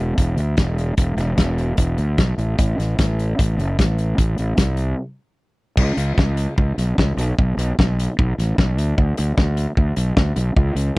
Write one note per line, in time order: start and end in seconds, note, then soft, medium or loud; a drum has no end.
0.00 0.12 E1 medium
0.18 0.35 E1 medium
0.18 kick loud
0.18 closed hi-hat medium
0.37 0.54 D2 medium
0.37 closed hi-hat medium
0.57 0.92 E1 medium
0.57 kick loud
0.57 snare loud
0.57 closed hi-hat medium
0.78 closed hi-hat medium
0.97 1.15 E1 medium
0.97 kick loud
0.97 closed hi-hat medium
1.17 1.34 E1 medium
1.17 snare soft
1.17 closed hi-hat medium
1.38 1.73 E1 medium
1.38 kick medium
1.38 snare loud
1.38 closed hi-hat medium
1.58 closed hi-hat medium
1.77 1.95 E1 medium
1.77 kick medium
1.77 closed hi-hat medium
1.98 2.15 D2 medium
1.98 closed hi-hat medium
2.18 2.35 B1 medium
2.18 kick loud
2.18 snare medium
2.18 closed hi-hat medium
2.38 2.55 A1 medium
2.38 closed hi-hat soft
2.58 2.76 A1 medium
2.58 kick loud
2.58 closed hi-hat medium
2.78 2.95 A1 medium
2.78 snare soft
2.78 closed hi-hat medium
2.99 3.33 A1 medium
2.99 kick loud
2.99 snare loud
2.99 closed hi-hat medium
3.19 closed hi-hat medium
3.39 3.56 A1 medium
3.39 kick loud
3.39 closed hi-hat medium
3.58 3.75 F#1 medium
3.58 closed hi-hat medium
3.79 4.13 A1 medium
3.79 kick loud
3.79 snare medium
3.79 closed hi-hat medium
3.98 closed hi-hat medium
4.18 4.36 A1 medium
4.18 kick medium
4.18 closed hi-hat medium
4.38 4.56 A1 medium
4.38 closed hi-hat medium
4.57 4.92 C2 medium
4.57 kick loud
4.57 snare loud
4.57 closed hi-hat medium
4.77 closed hi-hat medium
5.77 5.92 C#2 loud
5.77 kick loud
5.77 crash loud
5.97 6.11 C#2 medium
5.97 closed hi-hat medium
6.18 6.46 C#2 medium
6.18 kick loud
6.18 snare loud
6.37 closed hi-hat medium
6.58 6.72 C#2 medium
6.58 kick loud
6.78 6.92 B1 medium
6.78 snare soft
6.78 closed hi-hat medium
6.98 7.12 C#2 medium
6.98 kick medium
6.98 snare loud
7.17 7.31 B1 medium
7.17 closed hi-hat medium
7.39 7.52 B1 medium
7.39 kick loud
7.57 7.71 B1 medium
7.57 closed hi-hat medium
7.79 8.07 B1 medium
7.79 kick loud
7.79 snare loud
7.99 closed hi-hat medium
8.19 8.32 B1 loud
8.19 kick loud
8.38 8.52 A1 medium
8.38 snare soft
8.38 closed hi-hat medium
8.58 8.78 B1 medium
8.58 kick loud
8.58 snare loud
8.78 8.92 D2 medium
8.78 closed hi-hat medium
8.98 9.12 D2 medium
8.98 kick loud
9.17 9.32 D2 medium
9.17 closed hi-hat medium
9.38 9.65 D2 medium
9.38 kick loud
9.38 snare loud
9.57 closed hi-hat medium
9.77 9.91 D2 medium
9.77 kick loud
9.96 10.11 B1 medium
9.96 closed hi-hat medium
10.17 10.31 D2 medium
10.17 kick loud
10.17 snare loud
10.36 10.51 B1 medium
10.36 closed hi-hat medium
10.56 10.70 C#2 loud
10.56 kick loud
10.75 10.90 C#2 medium
10.75 closed hi-hat medium